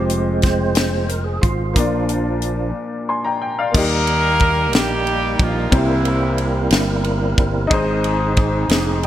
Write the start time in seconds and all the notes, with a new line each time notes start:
Already playing: F1 F3 G#3 C4 F4 G4 C5
0.10 closed hi-hat
0.42 C5, kick, snare, closed hi-hat
0.75 F3 G#3 C4, snare, closed hi-hat
1.09 A#4, closed hi-hat
1.24 G#4
1.42 G#1 F4, kick, closed hi-hat
1.73 A#1 A#2 F3 A#3 D4, kick, closed hi-hat
1.78 F4 D5
2.09 closed hi-hat
2.42 closed hi-hat
3.09 G#5 C6
3.25 G5 A#5
3.42 G5
3.59 D5 F5
3.71 D#2 D#3 G3 A#3 D4 D#4, kick, crash
3.75 A#3 D#4 G4 A#4
3.80 D#4
4.07 ride
4.40 kick, ride
4.72 A#1 G3 A#3 D#4 G4, snare, ride
5.07 ride
5.39 A#1 F3 F4, kick, ride
5.69 C2 C3 G3 A#3 C4 E4 A#4, kick, ride
5.74 E3 G3 A#3 E4 G4 C5
6.05 ride
6.38 ride
6.71 G1, snare, ride
7.04 ride
7.38 G1, kick, ride
7.67 G#2 C4 D#4 G#4, kick, ride
7.71 G#1 C5
8.04 ride
8.37 kick, ride
8.69 F1, snare, ride
9.03 G5, ride